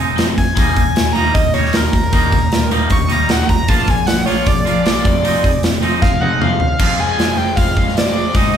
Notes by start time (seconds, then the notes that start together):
Already playing: F1 F2
0.00 C3 F3 G#3 C4 D#4
0.16 F1 F2 C3 F3, snare, open hi-hat
0.37 F1 F2 C3 G#5, kick, open hi-hat
0.55 D#1 D#2 A#2 D#3 G3 A#3 D4, kick, open hi-hat
0.59 G3 A#3 D#4
0.76 D#1 D#2 A#2, kick, open hi-hat
0.95 D#1 D#2 A#2, snare, open hi-hat
1.13 D#1 D#2 A#2 D#3 A#3 D#4 A#5, open hi-hat
1.17 D#3 G3
1.34 D#1 D#2 A#2 D#5, kick, open hi-hat
1.54 D#1 D#2 A#2 D#3 G3 A#3 D#4 C#5, open hi-hat
1.65 snare
1.73 D#2 A#2 D#3 A#4, snare, open hi-hat
1.93 D#1 D#2 A#2 A#4, kick, open hi-hat
2.12 D#1 D#2 A#2 D#3 G3 A#3 D#4, kick, open hi-hat
2.32 D#1 D#2 A#2, kick, open hi-hat
2.52 D#1 D#2 A#2, snare, open hi-hat
2.71 D#1 D#2 A#2 D#3 G3 A#3 D#4, open hi-hat
2.90 D#1 D#2 A#2 C#6, kick, open hi-hat
3.08 D#1 D#2 A#2 D#3 G3 A#3 D#4 A#5, open hi-hat
3.29 D#1 D#2 A#2 D#3 F#5, snare, open hi-hat
3.49 D#1 D#2 A#2 A#5, kick, open hi-hat
3.67 A#1 A#2 F3 A#3 D4 F4 G#4 D5 A5, kick, open hi-hat
3.71 A#3
3.87 A#1 A#2 F3 G#5, kick, open hi-hat
4.07 A#1 A#2 F3 F#5, snare, open hi-hat
4.26 A#1 A#2 F3 A#3 D4 F4 C#5, open hi-hat
4.46 A#1 A#2 F3 D5, kick, open hi-hat
4.65 A#1 A#2 F3 A#3 D4 F4, open hi-hat
4.85 A#1 A#2 F3 A#3, snare, open hi-hat
5.04 F1 F2 C3 F3 C4 D#4, kick, open hi-hat
5.23 F1 F2 C3 F3 G#3 C4 D#4, open hi-hat
5.44 F1 F2 C3, kick, open hi-hat
5.63 F1 F2 C3, snare, open hi-hat
5.82 F1 F2 C3 F3 G#3 C4 D#4, open hi-hat
6.02 F1 F2 C3 F5, kick, snare
6.20 F1 F2 C3 F3 G#3 C4 D#4 F#5, high tom
6.40 F1 F2 C3 F3 F5, mid tom
6.59 F1 F2 C3, floor tom
6.78 F1 F2 C3 F3 G#3 C4 F4 G#4 C5 F5, kick, crash
6.98 F1 G#3 G#5
7.17 F1 F3, snare, open hi-hat
7.37 F1 G#3 G5
7.56 F1 F4 F5, kick, open hi-hat
7.76 F1 G#3, kick
7.88 snare
7.95 F1 F3 D5, snare, open hi-hat
8.15 C4
8.33 G#1 G#2 D#3 G#3 C4 D#4 D#5, kick, open hi-hat
8.53 D#5